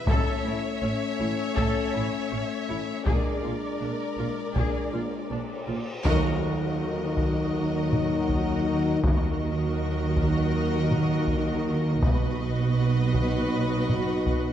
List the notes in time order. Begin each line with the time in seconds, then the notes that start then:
Already playing: E5
0.07 A1 A2 A3 C#4 A4 C#5, taiko
0.44 A1 A2 E4
0.82 A1 A2 C#4
1.19 A1 A2 E4
1.57 A1 A2 A4, taiko
1.94 A1 A2 E4
2.31 A1 A2 C#4
2.68 A1 A2 E4
3.06 A#1 A#2 G#3 D4 G#4 A#4 D5, taiko
3.44 A#1 A#2 F4
3.81 A#1 A#2 D4
4.18 A#1 A#2 F4
4.55 A#1 A#2 G#4, taiko
4.93 A#1 A#2 F4
5.31 A#1 A#2 D4
5.67 A#1 A#2 F4
6.04 D#2 D#3 F#3 D#4 F#4 A#4 D#5, taiko, tam-tam
7.17 taiko
7.93 taiko low-mid
8.29 taiko
9.03 D#2 D#3 F#3 D#4 F#4 A#4 D#5, taiko
10.17 taiko
10.91 taiko low-mid
11.27 taiko
12.02 B1 B2 F#3 D#4 F#4 B4 D#5, taiko
13.14 taiko
13.89 taiko low-mid
14.26 taiko